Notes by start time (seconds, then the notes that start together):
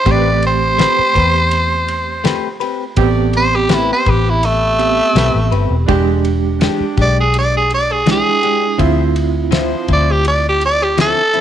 Already playing: C5
0.06 A1 A3 C4 G4 B4, kick, ride
0.11 D5
0.42 ride
0.47 C5
0.78 A3 C4 G4 B4 C5, snare, ride
0.99 muted fingered electric bass stroke
1.15 E2 C4 G4 B4, kick, ride
1.51 ride
1.88 ride
2.24 A3 C4 G4 B4, snare, ride
2.60 C4 G4 B4, ride
2.96 A1 A3 B3 C4 G4 D5, kick, ride
3.33 C5, ride
3.55 G4
3.68 A3 C4 G4 B4, snare, ride
3.74 E4
3.93 C5
4.06 A1 C4 G4 B4, kick, ride
4.29 E4
4.43 A3, ride
4.79 B3 C4 G4, ride
5.15 B1 A3 C4 G4 B4, snare, ride
5.34 A1
5.52 G1 C4 G4 B4, ride
5.70 E1
5.87 E1 E3 G#3 D4 G4, kick, ride
6.25 ride
6.59 E3 G#3 D4 G4, snare, ride
6.63 D4 G4
6.80 muted fingered electric bass stroke
6.97 B1 G#3 D4 G4, kick, ride
7.02 D5
7.20 G#4
7.34 ride
7.38 D5
7.57 G#4
7.70 D5, ride
7.92 G#4
8.06 E3 G#3 D4 E4 G4, snare, ride
8.11 G#4
8.43 G#3 D4 G4, ride
8.78 D2 D3 F3 C4 E4 F4 C5 E5, kick, ride
9.16 ride
9.51 D3 F3 C4 E4 C5, snare, ride
9.88 D2 F3 C4 E4, kick, ride
9.93 D5
10.11 G4
10.25 D5, ride
10.49 G4
10.61 ride
10.65 D5
10.84 G4
10.97 D3 F3 C4 E4 A4, snare, ride
11.34 F3 C4 E4, ride